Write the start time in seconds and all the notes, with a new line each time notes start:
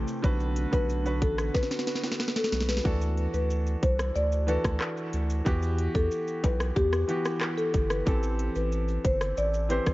Already playing: C3 E3 A3 G4 C5
0.08 shaker
0.23 B1 D3 B3 F#4 B4, kick, shaker
0.41 shaker
0.57 closed hi-hat, shaker
0.72 B1 D3 B3 F#4 B4, kick, shaker
0.90 shaker
1.04 D3 B3 F#4 B4, shaker
1.22 A1 A4, kick, closed hi-hat, shaker
1.38 cross-stick, shaker
1.54 B4, kick, snare, shaker
1.63 snare
1.71 snare, shaker
1.79 snare
1.87 snare, closed hi-hat
1.95 snare
2.03 snare, high timbale, shaker
2.11 snare
2.19 snare, shaker
2.28 snare
2.36 A4, snare, shaker
2.44 snare
2.52 B1, snare, closed hi-hat, shaker
2.60 snare
2.69 B4, snare, shaker
2.77 snare
2.84 D2 E3 D4 F#4 A4, kick, shaker
3.01 shaker
3.17 closed hi-hat, shaker
3.34 D2 B4, shaker
3.50 shaker
3.66 shaker
3.83 C2 C5, kick, closed hi-hat, shaker
3.99 cross-stick, shaker
4.15 D2 D5, shaker
4.32 shaker
4.47 E3 D4 F#4 A4 B4, closed hi-hat, shaker
4.64 D2, kick, cross-stick, shaker
4.80 cross-stick, clap, shaker
4.97 shaker
5.13 D2, closed hi-hat, shaker
5.30 shaker
5.45 E2 E3 B3 F#4 G4, kick, shaker
5.62 shaker
5.78 closed hi-hat, shaker
5.95 E2 A4, kick, shaker
6.11 shaker
6.28 shaker
6.44 B1 B4, kick, closed hi-hat, high timbale, shaker
6.60 cross-stick, shaker
6.76 E2 G4, kick, shaker
6.93 cross-stick, shaker
7.08 E3 B3 F#4 G4, closed hi-hat, shaker
7.25 cross-stick, shaker
7.41 cross-stick, clap, shaker
7.58 A4, shaker
7.74 G1, kick, closed hi-hat, shaker
7.90 B4, cross-stick, shaker
8.05 A1 E3 C4 G4 A4, kick, shaker
8.23 shaker
8.39 closed hi-hat, shaker
8.55 A1 B4, shaker
8.72 shaker
8.88 shaker
9.04 G1 C5, kick, closed hi-hat, shaker
9.21 cross-stick, shaker
9.37 A1 D5, shaker
9.53 shaker
9.69 E3 C4 G4 B4 C5, closed hi-hat, shaker
9.86 A1, kick, cross-stick, shaker